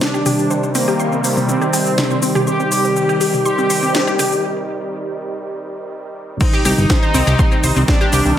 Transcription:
Already playing: analog synth pad C3 D#3 G3
0.01 synth arpeggio sound C4, analog polysynth D4, snare, shaker
0.14 synth arpeggio sound G4, shaker
0.26 synth arpeggio sound G4, open hi-hat, mid tom, shaker
0.39 shaker
0.50 synth arpeggio sound C5, shaker
0.63 synth arpeggio sound C5, shaker
0.75 analog polysynth A#3, synth arpeggio sound C4, open hi-hat, shaker
0.88 synth arpeggio sound G4, shaker
1.00 synth arpeggio sound C6, shaker
1.12 synth arpeggio sound C4, shaker
1.24 synth arpeggio sound C5, open hi-hat, shaker
1.37 synth arpeggio sound C4, mid tom, shaker
1.49 synth arpeggio sound C4, analog polysynth C4, shaker
1.62 synth arpeggio sound G4, shaker
1.73 synth arpeggio sound G4, open hi-hat, shaker
1.86 shaker
1.98 synth arpeggio sound C5, snare, mid tom, shaker
2.11 synth arpeggio sound C5, shaker
2.22 synth arpeggio sound C4, open hi-hat, shaker
2.35 synth arpeggio sound G4, mid tom, shaker
2.47 analog polysynth G4, synth arpeggio sound C6, shaker
2.60 synth arpeggio sound C4, shaker
2.72 synth arpeggio sound C5, open hi-hat, shaker
2.84 synth arpeggio sound C4, shaker
2.96 synth arpeggio sound C4, shaker
3.09 synth arpeggio sound G4, shaker
3.21 synth arpeggio sound G4, open hi-hat, shaker
3.34 mid tom, shaker
3.45 analog polysynth G4, synth arpeggio sound C6, shaker
3.58 synth arpeggio sound C4, shaker
3.70 synth arpeggio sound C5, open hi-hat, shaker
3.83 synth arpeggio sound C4, shaker
3.95 synth arpeggio sound C4, snare, shaker
4.07 synth arpeggio sound G4, shaker
4.19 synth arpeggio sound G4, open hi-hat, mid tom, shaker
4.32 shaker
6.41 analog synth pad C3 D#3 G3, synth arpeggio sound C4, analog polysynth D#4, kick, crash, shaker
6.53 synth arpeggio sound G4, shaker
6.65 analog synth bass C2, synth arpeggio sound G4, open hi-hat, shaker
6.78 analog synth bass G1, shaker
6.90 synth arpeggio sound C5, kick, snare, shaker
7.03 synth arpeggio sound C5, shaker
7.14 analog synth bass C2, synth arpeggio sound C4, open hi-hat, shaker
7.27 analog synth bass C2, synth arpeggio sound G4, mid tom, shaker
7.39 synth arpeggio sound C6, kick, shaker
7.52 synth arpeggio sound C4, shaker
7.64 analog synth bass C2, synth arpeggio sound C5, open hi-hat, shaker
7.76 analog synth bass C2, synth arpeggio sound C4, shaker
7.88 synth arpeggio sound C4, analog polysynth D4, kick, snare, shaker
8.01 synth arpeggio sound G4, shaker
8.13 analog synth bass C2, synth arpeggio sound G4, open hi-hat, mid tom, shaker
8.26 analog synth bass C2, shaker

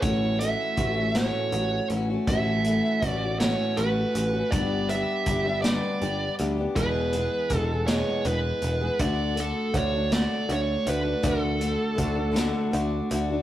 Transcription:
0.02 picked electric bass A1, steel-string acoustic guitar A2 E3 A3 C#4 F#4, lead electric guitar C#5, kick, closed hi-hat
0.39 steel-string acoustic guitar E3 A3 C#4, lead electric guitar E5, closed hi-hat
0.44 steel-string acoustic guitar F#4
0.77 picked electric bass A1, steel-string acoustic guitar E3 A3 C#4, clean electric guitar F#4, kick, closed hi-hat
0.81 steel-string acoustic guitar F#4
0.96 steel-string acoustic guitar A3 C#4 F#4
1.15 steel-string acoustic guitar A2 E3 A3 C#4 F#4, lead electric guitar C#5, snare, closed hi-hat
1.52 picked electric bass A1, steel-string acoustic guitar E3 A3 C#4, clean electric guitar F#4, closed hi-hat
1.57 steel-string acoustic guitar F#4
1.90 picked electric bass A1, steel-string acoustic guitar E3 A3, clean electric guitar C#4, closed hi-hat
1.95 steel-string acoustic guitar C#4 F#4
2.10 steel-string acoustic guitar A3 C#4 F#4
2.27 picked electric bass A1, steel-string acoustic guitar A2 E3 A3 C#4 F#4, lead electric guitar E5, kick, closed hi-hat
2.64 steel-string acoustic guitar E3, closed hi-hat
2.69 steel-string acoustic guitar A3 C#4 F#4
3.02 picked electric bass A1, steel-string acoustic guitar E3, clean electric guitar F#4, kick, closed hi-hat
3.07 steel-string acoustic guitar A3 C#4 F#4, lead electric guitar D5
3.24 steel-string acoustic guitar A3 C#4 F#4
3.40 steel-string acoustic guitar A2 E3, lead electric guitar C#5, snare, closed hi-hat
3.44 steel-string acoustic guitar A3 C#4 F#4
3.77 picked electric bass A1, steel-string acoustic guitar E3, clean electric guitar F#4, lead electric guitar B4, closed hi-hat
3.81 steel-string acoustic guitar A3 C#4 F#4
4.15 picked electric bass A1, steel-string acoustic guitar E3 A3 C#4, closed hi-hat
4.20 steel-string acoustic guitar F#4
4.33 steel-string acoustic guitar A3 C#4 F#4
4.51 picked electric bass G1, steel-string acoustic guitar G2 D3, lead electric guitar D5, kick, closed hi-hat
4.55 steel-string acoustic guitar G3 B3 D4 G4
4.89 steel-string acoustic guitar G3 B3 D4, lead electric guitar E5, closed hi-hat
4.95 steel-string acoustic guitar G4
5.26 picked electric bass G1, steel-string acoustic guitar G3 B3 D4, kick, closed hi-hat
5.30 steel-string acoustic guitar G4
5.44 steel-string acoustic guitar G3 B3 D4 G4
5.62 steel-string acoustic guitar G2 D3 G3 B3 D4 G4, lead electric guitar D5, snare, closed hi-hat
6.01 picked electric bass G1, steel-string acoustic guitar G3 B3 D4 G4, closed hi-hat
6.38 picked electric bass D2, steel-string acoustic guitar G3 B3 D4, closed hi-hat
6.43 steel-string acoustic guitar G4
6.57 steel-string acoustic guitar G3 B3 D4 G4
6.76 picked electric bass E1, steel-string acoustic guitar E2 B2 E3 G#3 G#4, lead electric guitar B4, kick, closed hi-hat
6.80 steel-string acoustic guitar B3
7.13 steel-string acoustic guitar E3 G#3 B3, closed hi-hat
7.17 steel-string acoustic guitar G#4
7.50 picked electric bass E1, steel-string acoustic guitar E3, clean electric guitar G#4, kick, closed hi-hat
7.54 steel-string acoustic guitar G#3 B3 G#4, lead electric guitar A4
7.71 steel-string acoustic guitar E3 G#3 B3 G#4
7.87 steel-string acoustic guitar E2 B2 E3 G#3, lead electric guitar C#5, snare, closed hi-hat
7.91 steel-string acoustic guitar B3 G#4
8.25 picked electric bass E1, steel-string acoustic guitar E3 G#3 B3 G#4, lead electric guitar B4, closed hi-hat
8.61 picked electric bass E1, steel-string acoustic guitar E3 G#3 B3 G#4, closed hi-hat
8.80 steel-string acoustic guitar E3 G#3 B3 G#4
8.99 picked electric bass D2, steel-string acoustic guitar D3 A3 D4 F#4, lead electric guitar D5, kick, closed hi-hat
9.34 steel-string acoustic guitar D3 A3 D4 F#4, closed hi-hat
9.40 lead electric guitar A4
9.74 picked electric bass D2, steel-string acoustic guitar D3 A3 D4 F#4, lead electric guitar C#5, kick, closed hi-hat
9.93 steel-string acoustic guitar A3 D4 F#4
10.10 steel-string acoustic guitar D3 A3 D4 F#4, snare, closed hi-hat
10.14 lead electric guitar D5
10.49 picked electric bass D2, steel-string acoustic guitar D3 A3 D4, clean electric guitar F#4, lead electric guitar C#5, closed hi-hat
10.53 steel-string acoustic guitar F#4
10.85 picked electric bass D2, steel-string acoustic guitar D3 A3 D4 F#4, closed hi-hat
10.89 lead electric guitar B4
11.03 steel-string acoustic guitar A3 D4 F#4
11.22 picked electric bass D2, steel-string acoustic guitar D3 A3 D4 F#4, kick, closed hi-hat
11.27 lead electric guitar A4
11.59 steel-string acoustic guitar D3 A3 D4 F#4, closed hi-hat
11.95 picked electric bass D2, steel-string acoustic guitar D3 A3 D4 F#4, kick, closed hi-hat
12.14 steel-string acoustic guitar A3 D4 F#4
12.32 steel-string acoustic guitar D3 A3 D4 F#4
12.36 snare, closed hi-hat
12.72 picked electric bass D2, steel-string acoustic guitar D3 A3 D4, closed hi-hat
12.76 steel-string acoustic guitar F#4
13.10 picked electric bass D2, steel-string acoustic guitar D3 A3 D4 F#4, closed hi-hat
13.30 steel-string acoustic guitar A3 D4 F#4

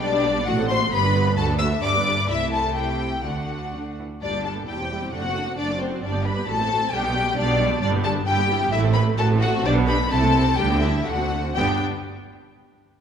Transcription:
Already playing: double bass section B1, cello section B2
0.02 viola section G3 D4, violin section D4 D5
0.13 viola section B3 G4
0.25 viola section G3 D4
0.36 viola section B3 G4
0.46 double bass section A1, cello section A2, viola section A3 F#4, violin section F#4 F#5
0.59 viola section C4 A4
0.69 viola section A3 F#4, violin section C5 C6
0.82 viola section C4 A4
0.92 double bass section G1, cello section G2, viola section B3 G4, violin section B4 B5
1.04 viola section D4 B4
1.15 viola section B3 G4
1.26 viola section D4 B4
1.37 double bass section D2, cello section D2, viola section A3 F#4, violin section A4 A5
1.48 viola section D4 A4
1.58 viola section A3 F#4, violin section E5 E6
1.71 viola section D4 A4
1.83 double bass section G1, cello section G2, viola section D4 G4, violin section D5 D6
1.95 viola section B3 B4
2.07 viola section D4 G4
2.18 viola section B3 B4
2.29 double bass section C2, cello section C3, viola section A3 E4, violin section E4 E5
2.52 violin section A4 A5
2.76 violin section G4 G5
3.24 double bass section D2, cello section D3, viola section A3 D4, violin section F#4 F#5
3.74 cello section D3
3.99 cello section E3
4.21 double bass section G1, cello section G2, viola section G3 D4, violin section D4 D5
4.33 viola section B3 G4
4.44 viola section G3 D4, violin section A4 A5
4.56 viola section B3 G4
4.67 double bass section E1, cello section E2, viola section G3 E4, violin section G4 G5
4.79 viola section C4 G4
4.90 viola section G3 E4
5.01 viola section C4 G4
5.12 double bass section F#1, cello section F#2, viola section A3 D4, violin section F#4 F#5
5.23 viola section C4 F#4
5.35 viola section A3 D4
5.47 viola section C4 F#4
5.58 double bass section F#1, cello section F#2, viola section A3 D4, violin section D4 D5
5.69 viola section C4 F#4
5.80 viola section A3 D4, violin section C4 C5
5.91 viola section C4 F#4
6.02 double bass section G1, cello section G2, viola section G3 D4, violin section D4 D5
6.13 viola section B3 G4
6.24 viola section G3 D4, violin section B4 B5
6.36 viola section B3 G4
6.47 double bass section A1, cello section A2, viola section A3 F#4, violin section A4 A5
6.59 viola section C4 A4
6.69 viola section A3 F#4
6.81 viola section C4 A4
6.92 double bass section B1, cello section B2, viola section G3 D4, violin section G4 G5
7.03 viola section B3 G4
7.13 viola section G3 D4
7.24 viola section B3 G4
7.36 double bass section B1, cello section B2, viola section G3 D4, violin section D4 D5
7.46 viola section B3 G4
7.58 viola section G3 D4
7.70 viola section B3 G4
7.81 double bass section G1, cello section G2, viola section G3 D4, violin section D4 D5
7.93 viola section B3 G4
8.04 viola section G3 D4, violin section A4 A5
8.16 viola section B3 G4
8.27 double bass section G1, cello section G2, viola section G3 E4, violin section G4 G5
8.38 viola section B3 G4
8.50 viola section G3 E4
8.61 viola section B3 G4
8.72 double bass section A1, cello section A2, viola section A3 E4, violin section E4 E5
8.84 viola section C4 A4
8.94 viola section A3 E4, violin section B4 B5
9.05 viola section C4 A4
9.18 double bass section A1, cello section A2, viola section A3 F#4, violin section A4 A5
9.30 viola section C4 A4
9.41 viola section A3 F#4, violin section F#4 F#5
9.53 viola section C4 A4
9.65 double bass section B1, cello section B2, viola section D4 G4, violin section D4 D5
9.75 viola section B3 B4
9.87 viola section D4 G4, violin section B4 B5
9.99 viola section B3 B4
10.10 double bass section C2, cello section C3, viola section C4 E4, violin section A4 A5
10.22 viola section A3 C4
10.34 viola section C4 E4
10.46 viola section A3 C4
10.57 double bass section D2, cello section D3, viola section G3 D4, violin section G4 G5
10.69 viola section B3 G4
10.81 viola section G3 D4, violin section E4 E5
10.93 viola section B3 G4
11.06 double bass section D2, cello section D3, viola section A3 D4, violin section F#4 F#5
11.18 viola section C4 F#4
11.30 viola section A3 D4
11.42 viola section C4 F#4
11.55 double bass section G1, cello section G2, viola section B3 D4, violin section G4 G5

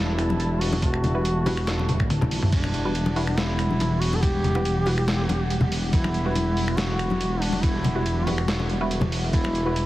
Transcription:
Already playing: detuned saw bass E1, analog synth pad G3 E4 A5, duduk E4
0.19 finger snap, closed hi-hat
0.30 muted conga, high conga
0.40 closed hi-hat
0.61 duduk F#4, open hi-hat
0.72 muted conga
0.82 detuned saw bass E1, duduk F#4, kick, closed hi-hat
0.94 finger snap
1.04 closed hi-hat, muted conga, low conga
1.15 synth stab G3 E4 F#4 B4
1.25 closed hi-hat
1.46 synth stab G3 E4 F#4 B4, open hi-hat, muted conga, high conga
1.57 finger snap
1.67 snare, closed hi-hat
1.79 muted conga
1.88 detuned saw bass D1, closed hi-hat, low conga
2.00 finger snap, kick
2.10 closed hi-hat, high tom
2.21 high tom, muted conga, low conga
2.31 detuned saw bass B1, open hi-hat
2.42 mid tom
2.52 detuned saw bass E1, synth texture G3, duduk D4, analog synth pad F#5, kick, closed hi-hat, ride, crash
2.64 finger snap, muted conga
2.74 closed hi-hat
2.85 synth stab G3 E4 F#4 B4
2.95 closed hi-hat, ride
3.06 muted conga
3.16 synth stab G3 E4 F#4 B4, open hi-hat
3.27 finger snap
3.37 duduk E4, snare, closed hi-hat, ride, muted conga
3.59 finger snap, closed hi-hat
3.71 high conga
3.80 closed hi-hat, ride, muted conga
4.01 duduk F#4, open hi-hat
4.13 duduk A4, muted conga
4.22 detuned saw bass E1, duduk G4, kick, closed hi-hat, ride
4.44 closed hi-hat, low conga
4.55 synth stab G3 E4 F#4 B4, muted conga
4.65 closed hi-hat, ride
4.86 synth stab G3 E4 F#4 B4, open hi-hat, muted conga
4.98 finger snap
5.08 snare, closed hi-hat, ride
5.29 detuned saw bass E1, closed hi-hat, muted conga
5.50 closed hi-hat, ride
5.61 muted conga, low conga
5.72 open hi-hat
5.92 detuned saw bass E1, duduk E4, kick, closed hi-hat, ride
6.04 finger snap, muted conga
6.14 closed hi-hat
6.25 synth stab G3 E4 F#4 B4
6.35 closed hi-hat, ride, muted conga
6.57 open hi-hat
6.68 finger snap
6.77 duduk F#4, snare, closed hi-hat, ride, muted conga
6.99 finger snap, closed hi-hat
7.10 muted conga, high conga
7.21 closed hi-hat, ride
7.41 duduk D4, open hi-hat
7.53 muted conga
7.62 detuned saw bass E1, duduk E4, kick, closed hi-hat, ride
7.84 closed hi-hat, muted conga, low conga
7.95 synth stab G3 E4 F#4 B4
8.06 closed hi-hat, ride
8.26 synth stab G3 E4 F#4 B4, duduk F#4, open hi-hat, muted conga, high conga
8.38 finger snap
8.48 snare, closed hi-hat, ride
8.60 muted conga
8.70 detuned saw bass E1, closed hi-hat
8.81 synth stab G3 E4 F#4 B4
8.91 closed hi-hat, ride
9.01 muted conga, low conga
9.12 open hi-hat
9.33 detuned saw bass E1, duduk E4, analog synth pad B4, kick, closed hi-hat, ride
9.44 finger snap, muted conga
9.55 closed hi-hat
9.66 synth stab G3 E4 F#4 B4
9.76 closed hi-hat, ride

